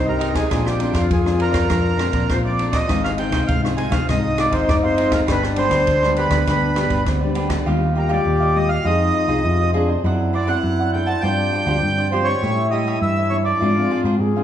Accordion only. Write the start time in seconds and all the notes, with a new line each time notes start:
0.08 A#4
0.35 G#4
0.68 G4
0.97 F4
1.13 G#4
1.41 A#4
2.31 C5
2.46 D5
2.74 D#5
3.04 F5
3.19 G5
3.47 F5
3.76 G#5
3.91 F5
4.09 D#5
4.39 D5
4.53 C5
4.69 D5
4.85 C5
5.14 A#4
5.31 B4
5.58 C5
6.17 B4
7.98 A#4
8.12 D5
8.56 D#5
8.69 F5
8.85 D#5
10.35 D5
10.48 F#5
10.93 G5
11.06 A5
11.21 G5
12.11 C5
12.24 C#5
12.71 D#5
13.02 E5
13.30 C#5
13.45 D5